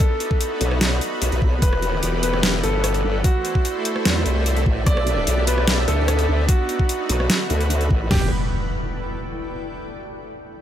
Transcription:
Already playing: B3 A4 B5
0.00 D#4 F#4 A4 B4
0.20 closed hi-hat
0.31 kick
0.41 closed hi-hat
0.61 B1, open hi-hat
0.71 cross-stick
0.81 snare, closed hi-hat
1.01 closed hi-hat
1.22 B1, closed hi-hat
1.32 B1, closed hi-hat
1.42 kick
1.62 E1 E3 B3 G4 A4 B4, kick, closed hi-hat
1.73 cross-stick
1.82 closed hi-hat
1.93 D5
2.03 E1, closed hi-hat
2.23 B4, open hi-hat
2.34 E5, cross-stick
2.43 snare, closed hi-hat
2.64 G1 A4, closed hi-hat
2.84 cross-stick, closed hi-hat
2.94 closed hi-hat
3.04 G1
3.24 A3 E4 F#4 C5, kick, closed hi-hat
3.45 closed hi-hat
3.55 kick
3.65 closed hi-hat
3.85 open hi-hat
3.96 cross-stick
4.05 E2, snare, closed hi-hat
4.26 C2, closed hi-hat
4.46 closed hi-hat
4.57 closed hi-hat
4.66 A1, kick
4.86 B1 B3 D4 G4 D5, kick, closed hi-hat
4.97 cross-stick
5.07 closed hi-hat
5.27 B1 B5, closed hi-hat
5.47 B4, open hi-hat
5.58 cross-stick
5.68 snare, closed hi-hat
5.88 D2 A4, closed hi-hat
6.08 cross-stick, closed hi-hat
6.19 closed hi-hat
6.28 D2
6.49 D#4 F#4, kick, closed hi-hat
6.69 closed hi-hat
6.79 kick
6.89 closed hi-hat
7.09 B1, open hi-hat
7.20 cross-stick
7.30 D3 A3, snare, closed hi-hat
7.50 D2, closed hi-hat
7.61 closed hi-hat
7.70 closed hi-hat
7.81 closed hi-hat
7.91 A1, kick
8.11 E1 E3 B3 G4, kick, snare, crash, impact

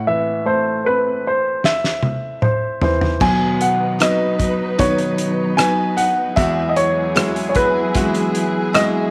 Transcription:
Already playing: A2
0.07 E3 E5
0.45 A3 C5
0.85 C4 B4
1.27 C5
1.64 E5, snare
1.84 snare
2.03 high tom
2.42 C5, mid tom
2.81 E3 C5, floor tom
3.01 floor tom
3.20 B2 D#3 F#3 B3 D#4 B4 G#5, kick, crash
3.61 F#5, closed hi-hat
3.99 F#3 B3 D#4 F#4 B4 D#5, cross-stick, closed hi-hat
4.38 F#3 B3 D#4 B4, kick, closed hi-hat
4.78 B2 D#3 F#3 B3 D#4 F#4 B4 C#5, kick, closed hi-hat
4.98 closed hi-hat
5.18 closed hi-hat
5.57 F#3 B3 D#4 F#4 B4 G#5, cross-stick, closed hi-hat
5.96 F#3 B3 D#4 B4 F#5, closed hi-hat
6.36 E2 E3 F#3 G#3 B3 E4 F#4 G#4 E5, kick, closed hi-hat
6.69 D#5
6.76 C#5, closed hi-hat
7.15 G#3 B3 E4 F#4, cross-stick, closed hi-hat
7.36 closed hi-hat
7.49 C#5
7.55 B3 E4 F#4 B4, kick, closed hi-hat
7.95 E3 G#3 B3 E4 F#4, kick, closed hi-hat
8.15 closed hi-hat
8.35 closed hi-hat
8.73 G#3 B3 E4 F#4 D#5, cross-stick, closed hi-hat

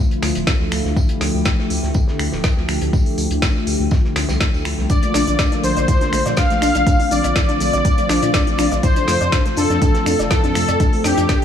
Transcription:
Already playing: D3 F3 A3 E4 F4
0.11 closed hi-hat
0.23 D2, finger snap, snare, open hi-hat, tambourine
0.35 D1, closed hi-hat
0.47 kick, snare, tambourine
0.59 D2, snare
0.72 D2, finger snap, open hi-hat, tambourine
0.85 D2, snare
0.96 G4, kick, tambourine
1.09 closed hi-hat
1.21 D2, snare, open hi-hat, tambourine
1.34 D2
1.45 kick, snare, tambourine
1.59 snare
1.70 D2, open hi-hat, tambourine
1.83 D2, snare
1.94 kick, tambourine
2.08 snare
2.19 D2, finger snap, open hi-hat, tambourine
2.32 D1, snare
2.44 kick, snare, tambourine
2.57 D2, snare
2.68 D2, finger snap, open hi-hat, tambourine
2.81 D2, closed hi-hat
2.93 kick, tambourine
3.06 open hi-hat
3.18 D2, open hi-hat, tambourine
3.31 D2, closed hi-hat
3.42 kick, snare, tambourine
3.55 snare
3.67 D2, open hi-hat, tambourine
3.80 D2
3.91 kick, snare, tambourine
4.04 snare
4.16 D2, finger snap, snare, open hi-hat, tambourine
4.29 C2, snare, tambourine
4.41 kick, snare
4.54 D2, tambourine
4.65 D2, finger snap, open hi-hat, tambourine
4.78 C2, snare
4.90 F3 A#3 D4 F4 D5, kick, closed hi-hat, tambourine, shaker
5.03 A3, closed hi-hat, shaker
5.14 A#1 D4, snare, open hi-hat, tambourine, shaker
5.27 A#1 D4, closed hi-hat, shaker
5.39 D4, kick, snare, closed hi-hat, tambourine, shaker
5.51 D4, snare, closed hi-hat, shaker
5.63 A#1 D4 C5, open hi-hat, tambourine, shaker
5.76 A#1 D5, snare, closed hi-hat, shaker
5.88 E4, kick, closed hi-hat, tambourine, shaker
6.01 D4, snare, closed hi-hat, shaker
6.13 A#1 A3, finger snap, open hi-hat, tambourine, shaker
6.26 A#2 D5, snare, closed hi-hat, shaker
6.37 D4 F5, kick, snare, closed hi-hat, tambourine, shaker
6.50 A#1 A3, snare, closed hi-hat, shaker
6.62 A#1 D4, finger snap, open hi-hat, tambourine, shaker
6.75 A#1 D4, closed hi-hat, shaker
6.87 C4 D4, kick, closed hi-hat, tambourine, shaker
7.00 D4, open hi-hat, shaker
7.11 A#1 D4 D5, open hi-hat, tambourine, shaker
7.24 A#1 D5, closed hi-hat, shaker
7.36 E4, kick, snare, closed hi-hat, tambourine, shaker
7.48 D4, snare, closed hi-hat, shaker
7.60 A#1 A3, open hi-hat, tambourine, shaker
7.73 A#1 D5, closed hi-hat, shaker
7.85 D4, kick, closed hi-hat, tambourine, shaker
7.98 A3, closed hi-hat, shaker
8.09 A#1 D4, finger snap, snare, open hi-hat, tambourine, shaker
8.22 A#2 D4, closed hi-hat, shaker
8.34 D4, kick, snare, closed hi-hat, tambourine, shaker
8.47 A#1 D4, snare, closed hi-hat, shaker
8.58 A#1 D4, finger snap, open hi-hat, tambourine, shaker
8.72 A#1 D5, snare, closed hi-hat, shaker
8.83 C3 A3 E4 A4 C5, kick, closed hi-hat, tambourine, shaker
8.96 D4, closed hi-hat, shaker
9.08 F2 A3, snare, open hi-hat, tambourine, shaker
9.21 F2 D5, closed hi-hat, shaker
9.32 D4, kick, snare, closed hi-hat, tambourine, shaker
9.46 A3, snare, closed hi-hat, shaker
9.56 F2 D4 A4, open hi-hat, tambourine, shaker
9.70 F2 D4, snare, closed hi-hat, shaker
9.82 D4, kick, closed hi-hat, tambourine, shaker
9.95 D4, snare, closed hi-hat, shaker
10.06 F2 D4, finger snap, open hi-hat, tambourine, shaker
10.19 F1 D5, snare, closed hi-hat, shaker
10.31 E4 A4, kick, snare, closed hi-hat, tambourine, shaker
10.43 F2 D4, snare, closed hi-hat, shaker
10.55 F2 A3, finger snap, open hi-hat, tambourine, shaker
10.68 F2 D5, closed hi-hat, shaker
10.80 C4 D4, kick, closed hi-hat, tambourine, shaker
10.93 A3, open hi-hat, shaker
11.04 F2 D4 G4, snare, open hi-hat, tambourine, shaker
11.18 F2 D4, closed hi-hat, shaker
11.29 D4, kick, snare, closed hi-hat, tambourine, shaker

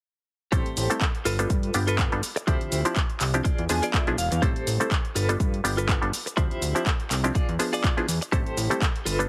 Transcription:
0.52 A1 G3 A3 C4 E4 G4 A4 C5, kick, closed hi-hat, shaker
0.66 A1, closed hi-hat
0.77 A1, open hi-hat, shaker
0.90 G3 A3 C4 E4 A4, closed hi-hat, shaker
1.01 kick, clap, closed hi-hat, shaker
1.15 closed hi-hat
1.25 G1 F4 A4 B4, open hi-hat, shaker
1.39 G3 B3 D4 F4 A4, closed hi-hat, shaker
1.50 G2, kick, closed hi-hat, shaker
1.63 closed hi-hat
1.74 G1 G3 B3 D4 F4 G4, open hi-hat, shaker
1.87 F4 A4 B4, closed hi-hat, shaker
1.99 kick, clap, closed hi-hat, shaker
2.12 G1 G3 B3 D4 F4 A4, closed hi-hat
2.23 open hi-hat, shaker
2.36 muted clean electric guitar stroke, closed hi-hat, shaker
2.47 D2 F3 C4 D4 E4 F4 G4 C5 E5, kick, closed hi-hat, shaker
2.61 D2, closed hi-hat
2.72 D2, open hi-hat, shaker
2.85 F3 C4 D4 E4 G4, closed hi-hat, shaker
2.96 kick, clap, closed hi-hat, shaker
3.10 closed hi-hat
3.21 C2, clap, open hi-hat, shaker
3.34 F3 C4 D4 E4 G4, closed hi-hat, shaker
3.44 F4 G#4 D5, kick, closed hi-hat, shaker
3.58 E2, closed hi-hat
3.69 E2 F3 B3 D4 G#4 E5 G#5, open hi-hat, shaker
3.82 F4 G#4 D5, closed hi-hat, shaker
3.94 B1 E5, kick, clap, closed hi-hat, shaker
4.07 B1 F3 B3 D4 E4 G#4, closed hi-hat
4.18 E1 F5, open hi-hat, shaker
4.31 E2, muted clean electric guitar stroke, closed hi-hat, shaker
4.42 A1 G3 A3 C4 E4 G4 A4 C5, kick, closed hi-hat, shaker
4.56 A1, closed hi-hat
4.67 A1, open hi-hat, shaker
4.80 G3 A3 C4 E4 A4, closed hi-hat, shaker
4.91 kick, clap, closed hi-hat, shaker
5.05 closed hi-hat
5.15 G1 F4 A4 B4, open hi-hat, shaker
5.29 G3 B3 D4 F4 A4, closed hi-hat, shaker
5.40 G2, kick, closed hi-hat, shaker
5.54 closed hi-hat
5.64 G1 G3 B3 D4 F4 G4, open hi-hat, shaker
5.77 F4 A4 B4, closed hi-hat, shaker
5.89 kick, clap, closed hi-hat, shaker
6.02 G1 G3 B3 D4 F4 A4, closed hi-hat
6.13 open hi-hat, shaker
6.26 muted clean electric guitar stroke, closed hi-hat, shaker
6.37 D2 F3 C4 D4 E4 F4 G4 C5 E5, kick, closed hi-hat, shaker
6.51 D2, closed hi-hat
6.62 D2, open hi-hat, shaker
6.75 F3 C4 D4 E4 G4, closed hi-hat, shaker
6.86 kick, clap, closed hi-hat, shaker
7.00 closed hi-hat
7.11 C2, clap, open hi-hat, shaker
7.24 F3 C4 D4 E4 G4, closed hi-hat, shaker
7.35 F4 G#4 D5, kick, closed hi-hat, shaker
7.49 E2, closed hi-hat
7.59 F3 B3 D4 G#4 E5, open hi-hat, shaker
7.73 F4 G#4 D5, open hi-hat, shaker
7.84 kick, clap, closed hi-hat, shaker
7.97 F3 B3 D4 E4 G#4, closed hi-hat
8.08 E2, open hi-hat, shaker
8.21 muted clean electric guitar stroke, closed hi-hat, shaker
8.32 A1 G3 A3 C4 E4 G4 A4 C5, kick, closed hi-hat, shaker
8.46 A1, closed hi-hat
8.57 A1, open hi-hat, shaker
8.70 G3 A3 C4 E4 A4, closed hi-hat, shaker
8.82 kick, clap, closed hi-hat, shaker
8.96 closed hi-hat
9.05 G1 F4 A4 B4, open hi-hat, shaker
9.19 G3 B3 D4 F4 A4, closed hi-hat, shaker

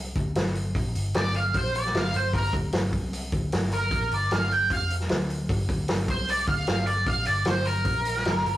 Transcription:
Already playing: C2
0.15 D2, kick, open hi-hat
0.35 G1, snare, open hi-hat
0.46 snare
0.55 open hi-hat
0.75 A#1, kick, open hi-hat
0.95 G1, open hi-hat
1.14 G1 D5, snare, open hi-hat
1.34 F5, open hi-hat
1.54 A#1 C5, kick, open hi-hat
1.75 D5, open hi-hat
1.85 snare
1.94 G1 F5, snare, open hi-hat
2.14 G1 C5, open hi-hat
2.33 G1 A#4, kick, open hi-hat
2.53 D2, kick, open hi-hat
2.72 G1, snare, open hi-hat
2.93 C2, kick, open hi-hat
3.13 open hi-hat
3.32 D2, kick, open hi-hat
3.52 G1, snare, open hi-hat
3.63 snare
3.72 A#4, open hi-hat
3.91 A#1, kick, open hi-hat
4.11 G1 D5, open hi-hat
4.31 G1 F5, snare, open hi-hat
4.51 G5, open hi-hat
4.70 F1 F5, kick, open hi-hat
4.90 open hi-hat
5.00 snare
5.09 D2, snare, open hi-hat
5.30 open hi-hat
5.49 G1, kick, open hi-hat
5.69 D2, kick, open hi-hat
5.88 G1, snare, open hi-hat
6.08 C2 C5, kick, open hi-hat
6.28 D5, open hi-hat
6.47 D2 F5, kick, open hi-hat
6.67 G1, snare, open hi-hat
6.78 snare
6.87 D5, open hi-hat
7.06 A#1 F5, kick, open hi-hat
7.25 G1 D5, open hi-hat
7.45 G1 C5, snare, open hi-hat
7.65 A#4, open hi-hat
7.85 A#1, kick, open hi-hat
8.05 open hi-hat
8.16 snare
8.25 G1, snare, open hi-hat
8.37 snare
8.45 G1, open hi-hat

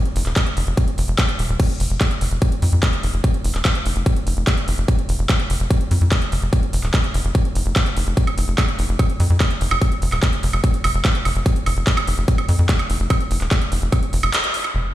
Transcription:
0.05 closed hi-hat
0.16 F1, open hi-hat
0.26 D#1, clap, closed hi-hat
0.36 kick, clap, closed hi-hat
0.47 closed hi-hat
0.57 F1, open hi-hat
0.67 F1, closed hi-hat
0.77 kick, closed hi-hat
0.88 closed hi-hat
0.98 F1, open hi-hat
1.08 F1, closed hi-hat
1.18 kick, clap, closed hi-hat
1.29 closed hi-hat
1.39 D#1, open hi-hat
1.49 D#1, closed hi-hat
1.60 kick, closed hi-hat, crash
1.70 closed hi-hat
1.80 F1, open hi-hat
1.90 F1, closed hi-hat
2.01 kick, clap, closed hi-hat
2.11 closed hi-hat
2.21 F1, open hi-hat
2.31 F1, closed hi-hat
2.42 kick, closed hi-hat
2.52 closed hi-hat
2.62 F2, open hi-hat
2.73 F2
2.83 kick, clap, closed hi-hat
2.93 closed hi-hat
3.03 F1, open hi-hat
3.14 F1, closed hi-hat
3.24 kick, closed hi-hat
3.34 closed hi-hat
3.44 F1, open hi-hat
3.55 D#1, clap, closed hi-hat
3.65 kick, clap, closed hi-hat
3.75 closed hi-hat
3.86 F1, open hi-hat
3.96 F1, closed hi-hat
4.06 kick, closed hi-hat
4.16 closed hi-hat
4.27 F1, open hi-hat
4.37 F1
4.47 kick, clap, closed hi-hat
4.58 closed hi-hat
4.68 F1, open hi-hat
4.78 F1, closed hi-hat
4.88 kick, closed hi-hat
4.99 closed hi-hat
5.09 F1, open hi-hat
5.19 F1, closed hi-hat
5.29 kick, clap, closed hi-hat
5.40 closed hi-hat
5.50 F1, open hi-hat
5.60 F1, closed hi-hat
5.70 kick, closed hi-hat
5.81 closed hi-hat
5.91 F2, open hi-hat
6.01 F2, closed hi-hat
6.12 kick, clap, closed hi-hat
6.22 closed hi-hat
6.32 F1, open hi-hat
6.42 F1, closed hi-hat
6.53 kick, closed hi-hat
6.63 closed hi-hat
6.73 F1, open hi-hat
6.84 D#1, clap
6.94 kick, clap, closed hi-hat
7.04 closed hi-hat
7.14 F1, open hi-hat
7.25 F1, closed hi-hat
7.35 kick, closed hi-hat
7.45 closed hi-hat
7.55 F1, open hi-hat
7.66 F1, closed hi-hat
7.76 kick, clap, closed hi-hat
7.86 closed hi-hat
7.97 F1, open hi-hat
8.07 F1, closed hi-hat
8.17 kick, closed hi-hat
8.27 closed hi-hat, high woodblock
8.38 F1, open hi-hat
8.48 F1, closed hi-hat
8.58 kick, clap, closed hi-hat, high woodblock
8.68 closed hi-hat
8.79 F1, open hi-hat
8.89 F1, closed hi-hat
8.99 kick, closed hi-hat, high woodblock
9.10 closed hi-hat
9.20 F2, open hi-hat
9.30 F2, closed hi-hat
9.40 kick, clap, closed hi-hat, high woodblock
9.51 closed hi-hat
9.61 F1, open hi-hat
9.71 F1, high woodblock
9.81 kick, closed hi-hat
9.92 closed hi-hat
10.02 F1, open hi-hat
10.12 D#1, clap, closed hi-hat, high woodblock
10.23 kick, clap, closed hi-hat
10.33 closed hi-hat
10.43 F1, open hi-hat
10.53 F1, closed hi-hat, high woodblock
10.64 kick, closed hi-hat
10.74 closed hi-hat
10.84 F1, open hi-hat, high woodblock
10.94 F1
11.05 kick, clap, closed hi-hat
11.15 closed hi-hat
11.25 F1, open hi-hat, high woodblock
11.36 F1, closed hi-hat
11.46 kick, closed hi-hat
11.56 closed hi-hat
11.66 F1, open hi-hat, high woodblock
11.77 F1, closed hi-hat
11.87 kick, clap, closed hi-hat
11.97 closed hi-hat, high woodblock
12.07 F1, open hi-hat
12.18 F1, closed hi-hat
12.28 kick, closed hi-hat
12.38 closed hi-hat, high woodblock
12.49 F2, open hi-hat
12.59 F2
12.69 kick, clap, closed hi-hat
12.79 closed hi-hat, high woodblock
12.90 F1, open hi-hat
13.00 F1, closed hi-hat
13.10 kick, closed hi-hat, high woodblock
13.20 closed hi-hat
13.31 F1, open hi-hat
13.41 D#1, clap, closed hi-hat
13.51 kick, clap, closed hi-hat, high woodblock
13.62 closed hi-hat
13.72 F1, open hi-hat
13.82 F1, closed hi-hat
13.92 kick, closed hi-hat, high woodblock
14.03 closed hi-hat
14.13 F1, open hi-hat
14.23 F1, high woodblock
14.34 clap, closed hi-hat
14.44 closed hi-hat
14.54 open hi-hat
14.64 closed hi-hat, high woodblock
14.75 F1

